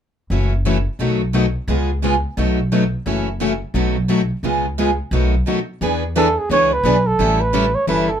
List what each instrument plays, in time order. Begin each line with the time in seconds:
0.30 upright bass F#1, steel-string acoustic guitar C#3 E3 F#3 A3 C#4 E4 F#4 A4
0.65 steel-string acoustic guitar C#3 E3 F#3 A3 C#4 E4 F#4 A4
0.99 upright bass B1, steel-string acoustic guitar B2 D#3 F#3 A3 B3 D#4 F#4 A4
1.33 steel-string acoustic guitar B2 D#3 F#3 A3 B3 D#4 F#4 A4
1.68 upright bass C#2, steel-string acoustic guitar C#3 G#3 B3 F4 G#4
2.02 steel-string acoustic guitar C#3 G#3 B3 F4 G#4
2.37 upright bass B1, steel-string acoustic guitar B2 D#3 F#3 A3 B3 D#4 F#4 A4
2.72 steel-string acoustic guitar B2 D#3 F#3 A3 B3 D#4 F#4 A4
3.06 upright bass F#1, steel-string acoustic guitar C#3 E3 F#3 A3 C#4 E4 F#4 A4
3.40 steel-string acoustic guitar C#3 E3 F#3 A3 C#4 E4 F#4 A4
3.74 upright bass B1, steel-string acoustic guitar B2 D#3 F#3 A3 B3 D#4 F#4 A4
4.08 steel-string acoustic guitar B2 D#3 F#3 A3 B3 D#4 F#4 A4
4.43 upright bass C#2, steel-string acoustic guitar C#3 G#3 B3 F4 G#4
4.78 steel-string acoustic guitar C#3 G#3 B3 F4 G#4
5.11 upright bass B1, steel-string acoustic guitar B2 D#3 F#3 A3 B3 D#4 F#4 A4
5.46 steel-string acoustic guitar B2 D#3 F#3 A3 B3 D#4 F#4 A4
5.81 upright bass E2, steel-string acoustic guitar E3 B3 D4 G#4 B4
6.15 steel-string acoustic guitar E3 B3 D4 G#4 B4, flugelhorn A4
6.38 flugelhorn G#4
6.49 upright bass C#2, steel-string acoustic guitar E3 B3 D4 G#4 B4, flugelhorn C#5
6.73 flugelhorn B4
6.84 upright bass B1, steel-string acoustic guitar E3 B3 D4 G#4 B4
7.07 flugelhorn A4
7.19 upright bass A1, steel-string acoustic guitar E3 G3 C#4 E4 A4
7.41 flugelhorn B4
7.53 steel-string acoustic guitar E3 G3 C#4 E4 A4
7.75 flugelhorn C#5
7.87 upright bass G1, steel-string acoustic guitar E3 G3 C#4 E4 A4, flugelhorn B4
8.09 flugelhorn A4